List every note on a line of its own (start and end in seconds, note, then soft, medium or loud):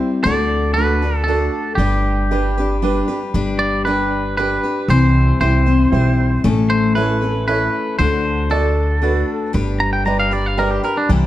0.00 0.25 G3 medium
0.00 0.25 C4 medium
0.00 0.25 E4 medium
0.00 0.26 C5 medium
0.24 1.47 D2 medium
0.24 0.76 D3 medium
0.24 0.76 A3 medium
0.24 0.77 D4 medium
0.24 0.77 F#4 medium
0.24 0.77 A4 medium
0.24 0.73 D5 loud
0.74 1.02 A3 medium
0.74 1.10 D4 medium
0.74 1.10 F#4 medium
0.74 1.11 A4 medium
0.74 1.17 B4 medium
0.78 1.03 D4 medium
0.78 1.02 F#4 medium
0.78 1.01 A4 medium
1.02 1.27 D4 soft
1.02 1.28 F#4 soft
1.02 1.28 A4 medium
1.17 1.24 A4 medium
1.24 1.61 D4 medium
1.24 1.75 A4 medium
1.28 1.78 A3 medium
1.28 1.79 D4 medium
1.28 1.62 F#4 medium
1.28 1.79 F#4 medium
1.28 1.62 A4 medium
1.28 1.80 A4 medium
1.75 3.01 G1 medium
1.75 2.30 G3 medium
1.75 2.30 D4 medium
1.75 2.76 G4 medium
1.79 2.31 G4 medium
1.79 2.31 B4 medium
2.31 2.57 G3 medium
2.31 2.65 D4 medium
2.31 2.57 D4 medium
2.31 2.65 G4 medium
2.31 2.57 G4 medium
2.31 2.65 B4 medium
2.31 2.56 B4 medium
2.58 2.81 D4 soft
2.58 2.82 G4 soft
2.58 2.83 B4 medium
2.82 3.08 G3 medium
2.82 3.16 D4 medium
2.82 3.08 D4 medium
2.82 3.17 G4 medium
2.82 3.08 G4 medium
2.82 3.06 B4 medium
2.82 3.17 B4 medium
3.08 3.34 D4 soft
3.08 3.34 G4 soft
3.08 3.34 B4 medium
3.34 4.57 G1 medium
3.34 3.86 G3 medium
3.34 3.86 D4 medium
3.34 3.87 G4 medium
3.34 3.86 B4 medium
3.59 3.84 D5 medium
3.85 4.36 G3 soft
3.85 4.20 D4 medium
3.85 4.37 D4 medium
3.85 4.21 G4 medium
3.85 4.38 G4 medium
3.85 4.35 B4 medium
3.85 4.21 B4 medium
3.85 4.39 B4 medium
4.37 4.63 G3 medium
4.37 4.72 D4 medium
4.37 4.64 D4 medium
4.37 4.72 G4 medium
4.37 4.63 G4 medium
4.37 4.88 B4 medium
4.37 4.73 B4 medium
4.37 4.62 B4 medium
4.63 4.90 D4 soft
4.63 4.90 G4 soft
4.63 4.89 B4 soft
4.88 5.30 C2 medium
4.88 5.41 C3 medium
4.88 6.44 E3 medium
4.88 5.39 G3 medium
4.88 5.40 C4 medium
4.88 5.42 E4 medium
4.88 5.40 C5 medium
4.88 5.42 C5 medium
5.40 5.85 C2 medium
5.40 5.66 G3 medium
5.40 5.66 C4 medium
5.40 5.75 E4 medium
5.40 5.66 E4 medium
5.40 5.75 G4 medium
5.40 6.41 C5 medium
5.40 5.75 C5 medium
5.40 5.65 C5 medium
5.66 5.91 G3 soft
5.66 5.92 C4 soft
5.66 5.93 E4 soft
5.66 5.92 C5 soft
5.92 6.36 B1 medium
5.92 6.44 G3 medium
5.92 6.44 C4 medium
5.92 6.26 E4 medium
5.92 6.44 E4 medium
5.92 6.26 G4 medium
5.92 6.27 C5 medium
5.92 6.45 C5 medium
6.44 7.67 A1 medium
6.44 6.96 A2 medium
6.44 6.96 E3 medium
6.44 6.95 A3 medium
6.44 6.95 C#4 medium
6.44 6.96 E4 medium
6.44 6.97 A4 medium
6.70 6.95 C5 medium
6.95 7.22 A3 medium
6.95 7.21 C#4 medium
6.95 7.30 E4 medium
6.95 7.21 E4 medium
6.95 7.30 A4 medium
6.95 7.20 A4 medium
6.95 7.46 B4 medium
6.95 7.31 C#5 medium
7.21 7.46 A3 soft
7.21 7.47 C#4 soft
7.21 7.48 E4 soft
7.21 7.47 A4 soft
7.47 7.98 A3 medium
7.47 7.99 C#4 medium
7.47 7.82 E4 medium
7.47 7.99 E4 medium
7.47 7.82 A4 medium
7.47 7.99 A4 medium
7.47 7.98 B4 medium
7.47 7.83 C#5 medium
7.99 9.22 D2 medium
7.99 8.51 D3 medium
7.99 8.49 A3 medium
7.99 8.50 D4 medium
7.99 8.50 F#4 medium
7.99 8.50 A4 medium
7.99 8.49 C5 medium
8.50 9.00 A3 medium
8.50 9.01 D4 medium
8.50 9.02 F#4 medium
8.50 8.85 F#4 medium
8.50 9.51 A4 medium
8.50 8.85 A4 medium
8.50 9.03 A4 medium
8.50 8.86 D5 medium
9.02 9.53 A3 medium
9.02 9.53 D4 medium
9.02 9.37 F#4 medium
9.02 9.54 F#4 medium
9.02 9.37 A4 medium
9.02 9.54 A4 medium
9.02 9.38 B4 medium
9.53 10.77 G1 medium
9.53 10.05 G3 medium
9.53 10.05 D4 medium
9.53 10.07 G4 medium
9.53 10.06 B4 medium
9.80 9.92 A#5 medium
9.93 10.05 G5 medium
10.05 10.32 G3 medium
10.05 10.32 D4 medium
10.05 10.40 G4 medium
10.05 10.31 G4 medium
10.05 10.41 B4 medium
10.05 10.30 B4 medium
10.05 10.41 D5 medium
10.05 10.19 A#5 medium
10.19 10.33 F5 medium
10.31 10.57 D4 soft
10.31 10.58 G4 soft
10.31 10.57 B4 soft
10.31 10.46 D5 medium
10.46 10.58 F5 medium
10.57 10.84 G3 medium
10.57 10.84 D4 medium
10.57 10.92 G4 medium
10.57 10.84 G4 medium
10.57 10.71 A#4 medium
10.57 10.92 B4 medium
10.57 10.82 B4 medium
10.57 10.92 D5 medium
10.71 10.83 G4 medium
10.83 11.10 D4 soft
10.83 11.10 G4 soft
10.83 10.97 A#4 medium
10.83 11.09 B4 medium
10.97 11.10 D4 medium
11.09 11.27 C2 medium
11.09 11.27 C3 medium
11.09 11.27 E3 medium
11.09 11.27 G3 medium
11.09 11.27 C4 medium
11.09 11.27 E4 medium
11.09 11.27 C5 medium